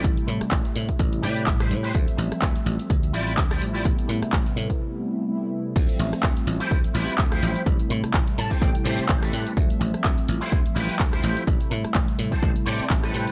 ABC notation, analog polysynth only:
X:1
M:4/4
L:1/8
Q:"Swing 16ths" 1/4=126
K:Am
V:1 name="Analog polysynth"
[C,G,A,E]6 [C,G,A,E]2 | [F,G,A,Ce]6- [F,G,A,Ce] [F,G,A,CE] | [C,A,B,E]6 [C,G,A,B,E]2 | e6- e [F,G,A,CE] |
[C,G,A,E]6 [C,A,E]2 | [F,G,A,Ce]6- [F,G,A,Ce] [F,G,A,CE] | [C,E]6 A,2 |]